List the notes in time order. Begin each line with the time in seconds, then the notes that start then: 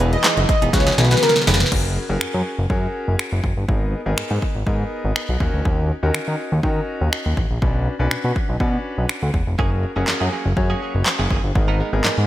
Already playing: E3 B3 D#4 E4 G#4 B4 D#5
0.00 E1 E3 B3 D#4 G#4, closed hi-hat
0.13 D#5, muted clean electric guitar stroke, closed hi-hat
0.24 E3 B3 D#4 G#4, snare, clap, closed hi-hat
0.37 F#1, muted clean electric guitar stroke, closed hi-hat
0.49 D#5, muted clean electric guitar stroke, kick, closed hi-hat
0.62 E1 E3 B3 D#4 G#4, closed hi-hat
0.73 C#2 C#3 G#3 B3 C#4 F#4 G#4 B4 C#5, kick, snare, closed hi-hat
0.80 snare
0.86 F#3 B3 C#4 G#4, snare, closed hi-hat
0.92 snare
0.98 B1 B3 C#4 F#4 G#4 B4, muted clean electric guitar stroke, snare, closed hi-hat
1.05 snare
1.11 B4, muted clean electric guitar stroke, snare, closed hi-hat
1.17 snare
1.23 A#4, muted clean electric guitar stroke, snare, closed hi-hat
1.29 snare
1.36 muted clean electric guitar stroke, snare, closed hi-hat
1.42 snare
1.47 F1 F#3 B3 C#4 G#4 B4, snare, open hi-hat
1.54 snare
1.60 muted clean electric guitar stroke, snare, closed hi-hat
1.66 snare
1.72 F#1 C#4 F#4 G#4 A#4, kick, crash
2.09 F#1 C#4 F#4 G#4 A#4
2.21 F#2, finger snap
2.34 F#2
2.59 F#1
2.70 F#2 C#4 F#4 G#4 A#4, kick
3.08 F#1
3.19 finger snap
3.32 F#1
3.44 F#1, kick
3.57 G1
3.68 G#1 B3 D#4 G#4 A#4, kick
4.06 G#1 B3 D#4 G#4 A#4
4.18 G#2, finger snap
4.31 G#2
4.42 kick
4.55 G#1
4.66 G#2 B3 D#4 G#4 A#4, kick
5.04 G#1
5.16 finger snap
5.29 B1
5.40 D#2 C#4 D#4 F#4 A#4, kick
5.54 D2
5.65 D#2, kick
6.03 D#2 C#4 D#4 F#4 A#4
6.14 D#3, finger snap
6.28 D#3
6.52 D#2
6.63 D#3 C#4 D#4 F#4 A#4, kick
7.01 D#2
7.13 finger snap
7.26 D#2
7.37 A1, kick
7.51 A#1
7.62 B1 C#4 D4 F#4 B4, kick
7.99 B1 C#4 D4 F#4 B4
8.11 B2, finger snap
8.24 B2
8.36 kick
8.49 B1
8.60 B2 C#4 D4 F#4 B4, kick
8.98 B1
9.09 finger snap
9.22 D2
9.34 E1, kick
9.47 F1
9.58 F#1 F#3 A#3 C#4 F#4 G#4 A#4, kick
9.71 muted clean electric guitar stroke
9.83 muted clean electric guitar stroke
9.96 F#1 F#3 A#3 C#4 F#4 G#4 A#4
10.08 F#2, snare, clap
10.20 F#2 F#3 A#3 C#4 G#4
10.32 F#3 A#3 C#4 G#4
10.45 F#1, muted clean electric guitar stroke
10.57 F#2 C#4 F#4 G#4 C#5, muted clean electric guitar stroke, kick
10.70 F#3 A#3 C#4 G#4
10.81 F#3 A#3 C#4 G#4
10.95 F#1, muted clean electric guitar stroke
11.06 muted clean electric guitar stroke, snare, clap
11.19 F#1 F#3 A#3 C#4 G#4
11.31 F#1 F#3 A#3 C#4 G#4, kick
11.44 G1, muted clean electric guitar stroke
11.55 G#1 B3 D#4 G#4 A#4, muted clean electric guitar stroke, kick
11.68 G#3 B3 D#4 A#4
11.80 G#3 B3 D#4 A#4
11.93 G#1 B3 D#4 G#4 A#4, muted clean electric guitar stroke
12.04 G#2 G#3 B3 D#4 A#4, snare, clap
12.17 G#2, muted clean electric guitar stroke